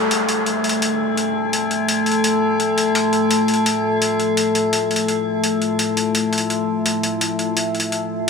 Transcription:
0.00 8.30 A3 medium
0.00 8.30 F4 medium
0.00 8.30 A4 medium
0.00 4.35 D5 medium
0.00 downlifter medium
0.11 closed hi-hat medium
0.29 closed hi-hat medium
0.46 closed hi-hat medium
0.64 closed hi-hat soft
0.69 closed hi-hat medium
0.82 closed hi-hat medium
1.17 closed hi-hat medium
1.53 closed hi-hat medium
1.71 closed hi-hat medium
1.89 closed hi-hat medium
2.06 closed hi-hat soft
2.12 closed hi-hat medium
2.24 closed hi-hat medium
2.60 closed hi-hat medium
2.78 closed hi-hat medium
2.95 closed hi-hat medium
3.13 closed hi-hat medium
3.31 closed hi-hat medium
3.48 closed hi-hat soft
3.54 closed hi-hat medium
3.66 closed hi-hat medium
4.02 closed hi-hat medium
4.20 closed hi-hat medium
4.37 8.30 E5 medium
4.37 closed hi-hat medium
4.55 closed hi-hat medium
4.73 closed hi-hat medium
4.91 closed hi-hat soft
4.96 closed hi-hat medium
5.08 closed hi-hat medium
5.44 closed hi-hat medium
5.62 closed hi-hat medium
5.79 closed hi-hat medium
5.97 closed hi-hat medium
6.15 closed hi-hat medium
6.33 closed hi-hat soft
6.38 closed hi-hat medium
6.50 closed hi-hat medium
6.86 closed hi-hat medium
7.03 closed hi-hat medium
7.21 closed hi-hat medium
7.39 closed hi-hat medium
7.57 closed hi-hat medium
7.75 closed hi-hat soft
7.80 closed hi-hat medium
7.92 closed hi-hat medium

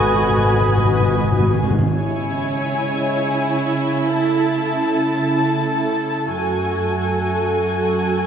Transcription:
0.00 1.65 G#1 medium
0.00 1.65 G#2 medium
0.00 1.58 B3 medium
0.00 1.54 F#4 medium
0.00 1.66 F#4 medium
0.00 0.70 A4 medium
0.00 1.66 B4 medium
0.00 1.53 D#5 medium
0.00 1.66 G#5 medium
0.00 1.54 B5 medium
0.07 0.13 G#2 soft
0.14 0.21 G#2 soft
0.22 0.28 G#2 soft
0.30 0.36 G#2 soft
0.37 0.44 G#2 soft
0.45 0.52 G#2 soft
0.54 0.59 G#2 soft
0.61 0.67 G#2 soft
0.68 0.76 G#2 soft
0.76 0.84 G#2 medium
0.76 1.58 F#4 medium
0.85 0.91 G#2 medium
0.92 0.99 G#2 medium
1.00 1.06 G#2 medium
1.07 1.14 G#2 medium
1.15 1.22 G#2 medium
1.24 1.31 G#2 medium
1.32 1.39 G#2 medium
1.40 1.46 G#2 medium
1.47 1.53 G#2 medium
1.54 1.61 G#2 medium
1.63 1.69 G#2 medium
1.70 1.77 G#2 medium
1.79 1.85 G#2 medium
1.89 6.29 C#3 medium
1.89 4.08 G#3 medium
1.89 6.29 E4 medium
1.89 6.30 E4 medium
1.89 4.08 C#5 medium
1.89 4.08 G#5 medium
4.11 8.27 A3 medium
4.11 8.27 A4 medium
4.11 6.33 A5 medium
6.33 8.27 F#2 medium
6.33 8.27 F#4 soft
6.33 8.27 A4 medium
6.33 8.27 G#5 medium

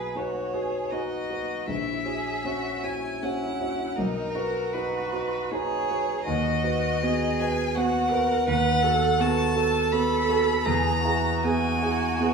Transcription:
0.00 1.71 B1 soft
0.00 0.12 F#4 soft
0.00 0.18 G#4 soft
0.00 0.12 B4 soft
0.00 0.18 B4 soft
0.15 0.49 D#4 soft
0.15 0.50 F#4 soft
0.15 0.56 F#4 soft
0.15 0.50 B4 soft
0.15 0.92 C#5 soft
0.54 0.88 F#4 soft
0.54 0.94 G#4 soft
0.54 0.88 B4 soft
0.91 1.27 D#4 soft
0.91 1.68 F#4 soft
0.91 1.27 F#4 soft
0.91 1.27 B4 soft
0.91 1.68 D#5 medium
1.30 1.64 F#4 soft
1.30 1.65 B4 soft
1.68 2.05 A#1 soft
1.68 2.08 E4 soft
1.68 2.86 E5 medium
2.05 2.40 F#4 soft
2.05 2.47 G#4 soft
2.05 2.41 C#5 soft
2.44 2.80 C#4 soft
2.44 2.80 F#4 soft
2.44 2.85 F#4 soft
2.44 2.80 C#5 soft
2.83 3.97 E4 soft
2.83 3.18 F#4 soft
2.83 3.18 C#5 soft
2.83 3.24 G#5 medium
3.23 3.56 C#4 soft
3.23 3.57 F#4 soft
3.23 3.57 C#5 soft
3.23 3.98 F#5 medium
3.60 3.94 F#4 soft
3.60 3.94 C#5 soft
3.96 4.35 B1 soft
3.96 4.37 D#4 soft
3.96 4.75 A#4 medium
4.35 5.54 F#4 soft
4.35 4.70 F#4 soft
4.35 4.70 B4 soft
4.73 5.10 D#4 soft
4.73 5.10 F#4 soft
4.73 5.52 B4 medium
4.73 5.10 B4 soft
5.13 5.48 F#4 soft
5.13 5.48 B4 soft
5.50 5.86 D#4 soft
5.50 5.86 F#4 soft
5.50 6.27 G#4 medium
5.50 5.86 B4 soft
5.50 6.24 C#5 medium
5.90 6.24 F#4 soft
5.90 6.24 B4 soft
6.25 6.64 D#2 medium
6.25 7.05 F#4 medium
6.25 7.41 D#5 medium
6.64 6.99 F#4 soft
6.64 6.99 B4 soft
7.03 7.36 B3 soft
7.03 7.36 F#4 soft
7.03 7.76 G#4 medium
7.03 7.36 B4 soft
7.39 7.73 F#4 soft
7.39 7.73 B4 soft
7.39 7.77 G#5 medium
7.75 8.08 B3 soft
7.75 8.12 F#4 medium
7.75 8.08 F#4 soft
7.75 8.09 B4 soft
7.75 8.47 F#5 medium
8.10 8.44 F#4 soft
8.10 8.48 A#4 medium
8.10 8.44 B4 soft
8.47 8.82 D#2 medium
8.47 8.84 B4 medium
8.47 9.22 F#5 medium
8.83 9.16 F#4 soft
8.83 9.21 A4 medium
8.83 9.17 A4 soft
9.20 9.52 B3 soft
9.20 9.58 F#4 medium
9.20 9.53 F#4 soft
9.20 9.53 A4 soft
9.20 9.94 A5 medium
9.56 9.89 F#4 soft
9.56 9.89 A4 soft
9.56 10.67 A4 medium
9.92 10.26 B3 soft
9.92 10.26 F#4 soft
9.92 10.26 A4 soft
9.92 10.67 B5 medium
10.29 10.62 F#4 soft
10.29 10.63 A4 soft
10.65 11.03 E2 medium
10.65 11.04 G#4 medium
10.65 11.44 A#5 medium
11.04 11.39 E4 soft
11.04 12.34 F#4 medium
11.04 11.40 G#4 soft
11.43 11.78 B3 soft
11.43 11.78 E4 soft
11.43 11.78 G#4 soft
11.43 12.34 G#5 medium
11.82 12.15 E4 soft
11.82 12.15 G#4 soft
12.20 12.34 B3 soft
12.20 12.34 E4 soft
12.20 12.34 G#4 soft

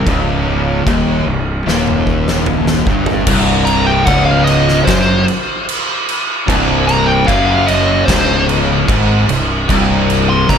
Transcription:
0.07 0.83 C#1 loud
0.07 0.85 C#2 loud
0.07 kick loud
0.07 crash medium
0.85 1.24 D#1 medium
0.85 1.25 D#2 loud
0.85 kick loud
0.85 crash medium
1.26 1.64 C1 medium
1.26 1.59 C2 medium
1.66 2.83 D#1 medium
1.66 2.85 D#2 loud
1.66 snare medium
1.87 high tom medium
2.07 kick medium
2.28 snare medium
2.46 mid tom medium
2.67 snare medium
2.86 3.24 G1 loud
2.86 3.26 G2 loud
2.86 kick loud
3.06 floor tom medium
3.27 4.03 C1 loud
3.27 4.05 C2 medium
3.27 kick loud
3.27 crash loud
3.27 crash medium
3.65 3.86 A#5 loud
3.65 crash medium
3.87 4.05 G5 medium
4.05 4.83 C#1 loud
4.05 4.85 C#2 loud
4.05 4.25 F#5 medium
4.05 kick loud
4.05 crash medium
4.25 4.46 F5 medium
4.44 4.84 D#5 loud
4.44 crash medium
4.68 snare soft
4.85 5.25 F#1 medium
4.85 5.26 F#2 loud
4.85 5.25 C5 loud
4.85 kick loud
4.85 snare loud
4.85 crash medium
5.28 crash medium
5.69 crash medium
6.09 crash medium
6.48 7.24 C1 loud
6.48 7.28 C2 loud
6.48 kick loud
6.48 crash medium
6.87 7.07 A#5 loud
6.87 crash medium
7.06 7.27 G5 medium
7.27 8.04 F#1 medium
7.27 8.07 F#2 loud
7.27 7.45 F5 medium
7.27 kick loud
7.27 crash medium
7.47 7.67 F5 medium
7.67 8.05 D#5 medium
7.67 crash medium
8.05 8.84 C#1 medium
8.05 8.87 C#2 loud
8.05 8.46 C5 loud
8.05 kick loud
8.05 crash loud
8.10 snare loud
8.49 crash medium
8.88 9.26 G#1 loud
8.88 9.27 G#2 loud
8.88 kick loud
8.88 crash medium
9.29 9.66 C1 medium
9.29 9.61 C2 medium
9.29 crash medium
9.68 10.45 C1 loud
9.68 10.47 C2 loud
9.68 kick loud
9.68 crash medium
10.10 crash medium
10.29 10.49 C6 loud
10.49 10.58 C#1 loud
10.49 10.58 C#2 medium
10.49 10.58 A#5 loud
10.49 kick loud
10.49 crash medium

